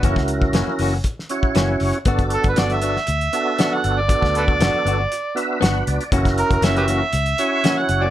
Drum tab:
HH |x-x-x-o-x-x-x-ox|xxxxxxx-xxx-x-x-|x-x-x-x-x-x-x-xx|xxxxxxx-xxx-x-x-|
SD |-o--o----o--o---|----o--o----o---|-o--o-------o---|-o--o-------o---|
BD |oo-o----o--o----|oo-o------------|oo-o------------|oo-o------------|